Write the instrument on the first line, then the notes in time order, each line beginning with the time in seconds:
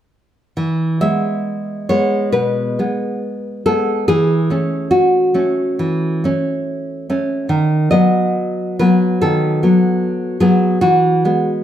nylon-string guitar
0.57 E3
1.01 G#3 B3 E5
1.89 G#3 B3 C#5
2.32 B2 B4
2.79 G#3 B3
3.66 G#3 B3 A4
4.08 E3 G#4
4.50 A3 C#4
4.91 F#4
5.34 A3 C#4
5.79 E3
6.24 A3 C#4
7.10 A3 C#4
7.49 D#3
7.91 F#3 B3 D#5
8.79 F#3 B3 B4
9.22 D#3 A4
9.63 F#3 B3
10.40 F#3 B3 G#4
10.81 E3 F#4
11.25 G#3 B3